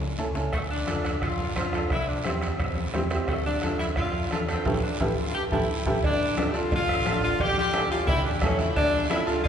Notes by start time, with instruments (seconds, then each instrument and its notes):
Already playing: fingered electric bass C#2, saxophone section C#4
0.01 low conga
0.18 fingered electric bass C#2, upright piano C#4 E4 A4, low conga, short guiro
0.35 upright piano C#4 E4 A4, low conga, short guiro
0.53 fingered electric bass D2, saxophone section A3, bombo low, bombo rim, high timbale, long guiro
0.70 saxophone section D4
0.87 fingered electric bass F2, upright piano D4 F4 A4, bombo rim, high conga, high timbale, short guiro
1.05 bombo rim, high timbale, short guiro
1.22 fingered electric bass F2, saxophone section F4, bombo low, bombo rim, high timbale, long guiro
1.40 high conga
1.56 fingered electric bass F2, upright piano D4 F4 C5, saxophone section F4, bombo low, bombo rim, high conga, high timbale, short guiro
1.73 upright piano D4 F4 A4, bombo rim, high timbale, short guiro
1.90 fingered electric bass C2, saxophone section E4, bombo low, bombo rim, high timbale, long guiro
2.08 saxophone section D4
2.25 fingered electric bass E2, upright piano C4 E4 G4, saxophone section C4, bombo rim, high conga, high timbale, short guiro
2.42 bombo rim, high timbale, short guiro
2.59 fingered electric bass E2, bombo low, bombo rim, high timbale, long guiro
2.77 high conga
2.94 fingered electric bass E2, upright piano C4 E4 G4, bombo rim, high conga, high timbale, low timbale, short guiro
3.10 upright piano C4 E4 G4, bombo rim, high timbale, short guiro
3.28 fingered electric bass D2, saxophone section A3, bombo low, bombo rim, high timbale, long guiro
3.45 saxophone section D4
3.62 fingered electric bass F2, upright piano D4 F4 A4, bombo rim, high conga, high timbale, short guiro
3.79 saxophone section E4, bombo rim, high timbale, short guiro
3.96 fingered electric bass F2, saxophone section F4, bombo low, bombo rim, high timbale, long guiro
4.31 fingered electric bass E2, upright piano D4 F4 A4, saxophone section F4, bombo rim, high conga, high timbale, short guiro
4.48 saxophone section C4, upright piano D4 F4 A4, bombo rim, high timbale, short guiro
4.65 fingered electric bass A1, saxophone section C#4, upright piano E4 G4 A4, bombo low, high conga, high timbale, long guiro
4.84 saxophone section D4
5.00 fingered electric bass A1, upright piano E4 G4 A4, saxophone section E4, bombo low, high conga, high timbale, long guiro
5.23 saxophone section F4
5.35 saxophone section G4
5.51 fingered electric bass A1, upright piano E4 G4 A4, saxophone section E4, bombo low, high conga, high timbale, long guiro
5.86 fingered electric bass A1, upright piano E4 G4 A4, saxophone section E4, bombo low, high conga, high timbale, long guiro
6.03 fingered electric bass D2, saxophone section D4, bombo low, cowbell, high conga, long guiro
6.36 upright piano D4 F4 A4, bombo rim, cowbell, high conga, short guiro
6.50 upright piano D4, saxophone section G4, short guiro
6.54 upright piano F4 A4, saxophone section F4
6.71 fingered electric bass F2, saxophone section F4, bombo low, cowbell, high conga, low conga, long guiro
6.89 fingered electric bass A1, bombo rim
7.05 fingered electric bass A1, upright piano D4 F4 A4, bombo rim, cowbell, high conga, short guiro
7.22 saxophone section F4, short guiro
7.39 fingered electric bass A1, saxophone section G4, bombo low, cowbell, high conga, long guiro
7.57 saxophone section G4, high conga
7.73 upright piano C#4 E4 A4, bombo rim, cowbell, high conga, short guiro
7.90 upright piano C#4 E4 G4, saxophone section F4, short guiro
8.07 fingered electric bass C#2, saxophone section E4, bombo low, cowbell, high conga, low conga, long guiro
8.25 fingered electric bass E2, saxophone section D4
8.42 fingered electric bass E2, upright piano C#4 E4 A4, saxophone section C#4, bombo low, bombo rim, cowbell, high conga, low timbale, short guiro
8.59 saxophone section E4, short guiro
8.76 fingered electric bass D2, saxophone section D4, bombo low, cowbell, high conga, long guiro
9.10 upright piano D4 F4 A4, saxophone section E4, bombo rim, cowbell, high conga, short guiro
9.26 upright piano D4 F4 A4, saxophone section F4, short guiro
9.43 fingered electric bass F2, saxophone section F4, bombo low, long guiro